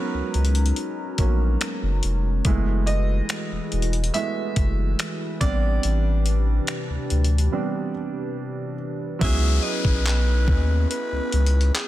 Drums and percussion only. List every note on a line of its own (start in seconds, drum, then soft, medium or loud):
0.34 closed hi-hat medium
0.45 closed hi-hat soft
0.55 closed hi-hat medium
0.66 closed hi-hat soft
0.76 closed hi-hat medium
1.18 kick medium
1.18 closed hi-hat medium
1.61 finger snap loud
1.61 closed hi-hat medium
2.03 closed hi-hat medium
2.45 kick loud
2.45 closed hi-hat medium
2.87 closed hi-hat medium
3.29 finger snap loud
3.29 closed hi-hat medium
3.72 closed hi-hat medium
3.82 closed hi-hat medium
3.93 closed hi-hat soft
4.04 closed hi-hat medium
4.14 closed hi-hat medium
4.56 kick medium
4.56 closed hi-hat medium
4.99 finger snap loud
4.99 closed hi-hat medium
5.41 kick loud
5.41 closed hi-hat medium
5.83 closed hi-hat medium
6.26 closed hi-hat medium
6.67 finger snap loud
6.67 closed hi-hat medium
7.10 closed hi-hat medium
7.24 closed hi-hat soft
7.38 closed hi-hat medium
9.21 kick loud
9.21 closed hi-hat medium
9.85 kick medium
10.06 clap loud
10.06 closed hi-hat medium
10.48 kick medium
10.91 closed hi-hat medium
11.32 closed hi-hat medium
11.46 closed hi-hat medium
11.61 closed hi-hat soft
11.75 clap loud
11.75 closed hi-hat medium